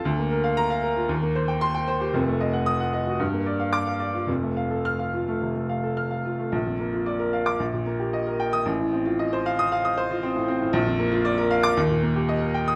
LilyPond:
\new Staff \with { instrumentName = "Grand piano" } { \time 4/4 \key bes \major \tempo 4 = 114 << { r4 bes''8 r4. c'''8 r8 | r4 ees'''8 r4. d'''8 r8 | r4 f'''8 r2 r8 | r4. r16 d'''16 r4. r16 ees'''16 |
r4. r16 ees'''8 r4. r16 | r4. r16 d'''16 r4. r16 ees'''16 | } \\ { d,16 bes16 bes'16 f''8 f''16 bes'16 f'16 ees,16 bes16 c''16 g''8 g''16 c''16 g'16 | <f,, f,>16 a16 ees''16 ges''8 ges''16 ees''16 ges'16 g,16 bes16 d''16 f''8 f''16 d''16 f'16 | <f,, f,>16 a16 f''16 a'8 f''16 f'16 a16 c16 a16 f''16 a'16 f'''16 f''16 f'16 a16 | bes,,16 f,16 bes16 f'16 d''16 bes'16 f''8 bes,,16 bes,16 bes16 g'16 ees''16 bes'16 g''8 |
a,,16 a,16 c'16 f'16 ees''16 c''16 f''8 f''16 ees'''16 c''16 f'16 c'16 a,16 c'16 a,16 | bes,,16 f,16 bes16 f'16 d''16 bes'16 f''8 ees,16 bes,16 bes16 g'16 ees''16 bes'16 g''8 | } >> }